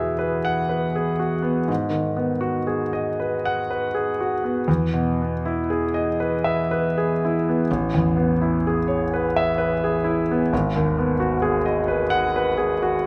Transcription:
0.00 1.63 E2 soft
0.00 1.72 B2 soft
0.00 1.42 B3 soft
0.00 1.19 F#4 soft
0.00 0.11 G#4 soft
0.00 0.37 E5 soft
0.19 0.61 B4 soft
0.45 0.85 F#5 medium
0.69 1.10 B4 soft
0.95 1.35 G#4 soft
1.19 1.59 F#4 soft
1.42 1.68 B3 soft
1.68 4.64 G#2 medium
1.90 2.31 D#3 soft
2.17 2.57 B3 soft
2.41 2.82 F#4 soft
2.67 3.08 G#4 soft
2.93 3.34 D#5 soft
3.20 3.60 B4 soft
3.45 3.85 F#5 medium
3.71 4.10 B4 soft
3.94 4.34 G#4 soft
4.20 4.59 F#4 soft
4.44 4.68 B3 soft
4.68 7.64 E2 medium
4.93 5.33 B2 soft
5.22 5.59 B3 soft
5.45 5.84 E4 soft
5.70 6.09 G#4 soft
5.94 6.33 D#5 soft
6.20 6.59 B4 soft
6.44 6.84 E5 medium
6.71 7.10 B4 medium
6.98 7.36 G#4 soft
7.25 7.61 E4 soft
7.49 7.71 B3 soft
7.71 10.49 A1 medium
7.94 8.32 E2 soft
8.17 8.55 B3 soft
8.42 8.79 E4 soft
8.67 9.03 G#4 soft
8.88 9.25 C#5 soft
9.14 9.50 B4 soft
9.36 9.73 E5 medium
9.58 9.96 B4 soft
9.84 10.20 G#4 soft
10.04 10.42 E4 soft
10.31 10.53 B3 soft
10.53 13.06 G#1 medium
10.76 11.12 D#2 soft
10.98 11.35 B3 soft
11.20 11.57 F#4 soft
11.42 11.79 G#4 medium
11.66 12.03 D#5 soft
11.88 12.25 B4 medium
12.10 12.48 F#5 medium
12.36 12.72 B4 medium
12.57 12.94 G#4 soft
12.83 13.06 F#4 soft

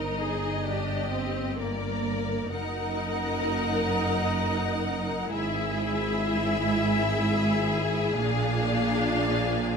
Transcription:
0.00 2.48 G1 soft
0.00 2.49 G2 soft
0.00 0.65 D#4 soft
0.00 0.21 A#4 medium
0.00 1.56 D#5 medium
0.20 0.67 G#4 medium
0.66 1.13 D4 soft
0.66 1.58 G4 soft
1.13 1.58 C4 soft
1.59 2.52 A#3 soft
1.59 2.50 A#4 soft
1.59 2.52 D5 soft
2.51 5.29 F#1 medium
2.51 5.29 F#2 medium
2.51 5.29 D#4 medium
2.51 5.29 A#4 medium
2.51 5.28 F#5 medium
5.32 8.14 G#1 medium
5.32 8.14 G#2 medium
5.32 8.15 E4 medium
5.32 9.77 G#4 medium
5.32 8.18 E5 medium
8.18 9.77 A#1 medium
8.18 9.77 A#2 medium
8.18 9.77 D4 medium
8.18 9.77 F5 medium

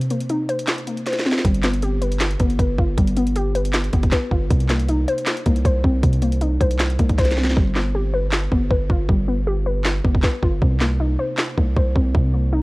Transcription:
0.00 1.06 C3 loud
0.00 0.87 C4 medium
0.00 0.48 C5 medium
0.00 closed hi-hat medium
0.11 0.86 A#3 medium
0.11 closed hi-hat medium
0.21 closed hi-hat medium
0.30 1.45 D#4 medium
0.30 closed hi-hat medium
0.49 1.05 C5 medium
0.49 closed hi-hat medium
0.59 closed hi-hat medium
0.67 snare loud
0.67 clap medium
0.67 closed hi-hat medium
0.78 closed hi-hat medium
0.87 1.45 A#3 medium
0.87 closed hi-hat medium
0.97 closed hi-hat medium
1.06 1.45 C5 loud
1.06 snare medium
1.06 closed hi-hat medium
1.13 snare medium
1.13 closed hi-hat medium
1.19 snare medium
1.19 closed hi-hat soft
1.26 1.45 C4 medium
1.26 snare medium
1.32 snare loud
1.38 snare medium
1.45 2.36 G1 loud
1.45 2.59 G3 medium
1.45 kick loud
1.45 closed hi-hat medium
1.55 closed hi-hat medium
1.63 2.39 B3 medium
1.63 snare medium
1.63 clap medium
1.63 closed hi-hat medium
1.74 closed hi-hat medium
1.83 2.98 G4 medium
1.83 closed hi-hat medium
2.02 2.58 B4 medium
2.02 closed hi-hat medium
2.12 closed hi-hat medium
2.20 snare loud
2.20 clap medium
2.20 closed hi-hat medium
2.31 closed hi-hat medium
2.40 2.59 G1 loud
2.40 3.16 B3 medium
2.40 kick loud
2.40 closed hi-hat medium
2.50 closed hi-hat soft
2.59 2.78 G1 loud
2.59 3.54 B4 medium
2.59 kick loud
2.59 closed hi-hat medium
2.78 2.97 G1 loud
2.78 3.93 F4 medium
2.78 kick medium
2.98 3.89 G1 loud
2.98 4.12 G3 loud
2.98 kick loud
2.98 closed hi-hat medium
3.07 closed hi-hat medium
3.16 3.92 B3 medium
3.16 closed hi-hat medium
3.27 closed hi-hat medium
3.36 4.50 G4 loud
3.36 closed hi-hat medium
3.55 4.11 B4 medium
3.55 closed hi-hat medium
3.65 closed hi-hat medium
3.73 snare loud
3.73 clap medium
3.73 closed hi-hat medium
3.84 closed hi-hat medium
3.93 4.12 G1 loud
3.93 4.50 B3 medium
3.93 kick loud
3.93 closed hi-hat medium
4.03 kick loud
4.03 closed hi-hat medium
4.11 4.50 B4 medium
4.11 kick loud
4.11 snare medium
4.11 clap medium
4.11 closed hi-hat medium
4.31 4.50 G1 loud
4.31 4.50 F4 medium
4.31 kick medium
4.50 5.05 C2 loud
4.50 5.65 C3 medium
4.50 kick loud
4.50 closed hi-hat medium
4.60 closed hi-hat medium
4.69 5.45 A#3 medium
4.69 snare medium
4.69 clap medium
4.69 closed hi-hat medium
4.79 closed hi-hat medium
4.88 6.03 D#4 medium
4.88 closed hi-hat medium
5.08 5.64 C5 medium
5.08 closed hi-hat medium
5.18 closed hi-hat medium
5.26 snare loud
5.26 clap medium
5.26 closed hi-hat medium
5.37 closed hi-hat medium
5.46 5.64 C2 loud
5.46 6.21 A#3 medium
5.46 kick loud
5.46 closed hi-hat medium
5.56 closed hi-hat medium
5.65 5.83 C2 loud
5.65 6.59 C5 medium
5.65 kick loud
5.65 closed hi-hat medium
5.84 6.03 C2 loud
5.84 6.99 C4 medium
5.84 kick medium
6.03 6.58 C2 loud
6.03 7.18 C3 loud
6.03 kick loud
6.03 closed hi-hat medium
6.13 closed hi-hat medium
6.22 6.98 A#3 medium
6.22 closed hi-hat medium
6.32 closed hi-hat medium
6.41 7.56 D#4 medium
6.41 closed hi-hat medium
6.61 6.97 C2 loud
6.61 7.17 C5 medium
6.61 kick medium
6.61 closed hi-hat medium
6.71 closed hi-hat medium
6.79 snare loud
6.79 clap medium
6.79 closed hi-hat medium
6.90 closed hi-hat medium
6.99 7.54 C2 loud
6.99 7.56 A#3 medium
6.99 kick loud
6.99 closed hi-hat medium
7.09 kick loud
7.09 closed hi-hat medium
7.18 7.56 C5 loud
7.18 kick loud
7.18 snare medium
7.18 closed hi-hat medium
7.24 snare medium
7.24 closed hi-hat medium
7.31 snare medium
7.31 closed hi-hat soft
7.37 7.56 C4 medium
7.37 snare medium
7.44 snare loud
7.50 snare medium
7.56 8.48 G1 loud
7.56 8.71 G3 medium
7.56 kick loud
7.75 8.51 B3 medium
7.75 snare medium
7.75 clap medium
7.94 9.09 G4 medium
8.14 8.70 B4 medium
8.32 snare loud
8.32 clap medium
8.52 8.70 G1 loud
8.52 9.27 B3 medium
8.52 kick medium
8.71 8.89 G1 loud
8.71 9.65 B4 medium
8.71 kick loud
8.90 9.08 G1 loud
8.90 10.05 F4 medium
8.90 kick medium
9.09 10.01 G1 loud
9.09 10.24 G3 loud
9.09 kick loud
9.28 10.03 B3 medium
9.47 10.62 G4 loud
9.66 10.22 B4 medium
9.85 snare loud
9.85 clap medium
10.05 10.23 G1 loud
10.05 10.62 B3 medium
10.05 kick medium
10.15 kick loud
10.23 10.62 B4 medium
10.23 kick loud
10.23 snare loud
10.23 clap medium
10.43 10.61 G1 loud
10.43 10.62 F4 medium
10.43 kick medium
10.62 11.17 C2 loud
10.62 11.77 C3 loud
10.62 kick loud
10.80 11.56 A#3 medium
10.80 snare medium
10.80 clap medium
11.00 12.15 D#4 medium
11.19 11.75 C5 medium
11.38 snare loud
11.38 clap medium
11.57 11.76 C2 loud
11.57 12.33 A#3 medium
11.57 kick loud
11.76 11.95 C2 loud
11.76 12.62 C5 medium
11.76 kick loud
11.96 12.14 C2 loud
11.96 12.62 C4 medium
11.96 kick medium
12.15 12.62 C2 loud
12.15 12.62 C3 loud
12.15 kick loud
12.34 12.62 A#3 medium
12.53 12.62 D#4 medium

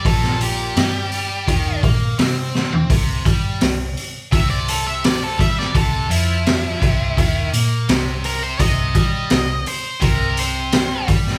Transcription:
0.04 0.72 A#1 medium
0.04 0.75 A#2 medium
0.04 0.40 A4 medium
0.04 kick loud
0.04 open hi-hat medium
0.23 snare soft
0.41 1.80 G4 medium
0.41 open hi-hat medium
0.75 1.44 G2 loud
0.75 1.46 G3 loud
0.75 snare loud
0.75 open hi-hat medium
1.12 open hi-hat soft
1.47 1.81 D#2 medium
1.47 1.82 D#3 loud
1.47 kick medium
1.47 open hi-hat medium
1.83 2.16 A#2 medium
1.83 2.18 A#3 loud
1.83 kick loud
1.83 open hi-hat medium
2.19 2.86 C3 medium
2.19 2.89 C4 loud
2.19 snare loud
2.19 open hi-hat medium
2.55 snare medium
2.72 floor tom medium
2.90 3.23 C2 medium
2.90 3.25 C3 loud
2.90 kick loud
2.90 open hi-hat medium
3.25 3.59 G2 medium
3.25 3.60 G3 loud
3.25 kick loud
3.25 open hi-hat medium
3.61 3.95 C2 medium
3.61 3.90 C3 medium
3.61 snare loud
3.61 open hi-hat medium
3.97 open hi-hat medium
4.32 5.35 C2 medium
4.32 5.38 C3 loud
4.32 4.50 E5 loud
4.32 kick loud
4.32 open hi-hat medium
4.50 4.68 D5 medium
4.68 4.86 A4 medium
4.68 open hi-hat medium
4.87 5.05 E5 medium
5.04 5.22 D5 loud
5.04 snare loud
5.04 open hi-hat medium
5.23 5.40 A4 medium
5.38 5.72 G2 loud
5.38 5.73 G3 loud
5.38 5.59 E5 medium
5.38 kick loud
5.38 open hi-hat medium
5.59 5.75 D5 medium
5.59 snare soft
5.74 6.08 C2 medium
5.74 6.09 C3 loud
5.74 6.10 A4 loud
5.74 kick loud
5.74 open hi-hat medium
6.09 6.77 F2 medium
6.09 6.80 F3 loud
6.09 7.49 E4 loud
6.09 open hi-hat medium
6.46 snare loud
6.46 open hi-hat medium
6.81 7.15 C2 loud
6.81 7.16 C3 loud
6.81 kick loud
6.81 open hi-hat medium
7.17 7.51 D#2 loud
7.17 7.52 D#3 loud
7.17 kick medium
7.17 open hi-hat medium
7.52 7.86 A#2 medium
7.52 7.87 A#3 loud
7.52 open hi-hat medium
7.88 8.56 C2 medium
7.88 8.58 C3 loud
7.88 snare loud
7.88 open hi-hat medium
8.24 8.42 A#4 loud
8.24 open hi-hat medium
8.43 8.61 C5 medium
8.59 8.92 C2 medium
8.59 8.94 C3 loud
8.59 9.64 D#5 medium
8.59 kick loud
8.59 open hi-hat medium
8.95 9.28 G2 medium
8.95 9.30 G3 loud
8.95 kick loud
8.95 open hi-hat medium
9.30 9.64 C2 medium
9.30 9.59 C3 medium
9.30 snare loud
9.30 open hi-hat medium
9.66 10.02 C5 loud
9.66 open hi-hat medium
10.00 11.04 C2 loud
10.00 11.07 C3 loud
10.00 10.37 A#4 medium
10.00 kick loud
10.00 open hi-hat medium
10.37 11.08 C5 loud
10.37 open hi-hat medium
10.72 snare loud
10.72 open hi-hat medium
11.07 11.38 G2 loud
11.07 11.38 G3 loud
11.07 kick loud
11.07 open hi-hat medium
11.26 snare soft

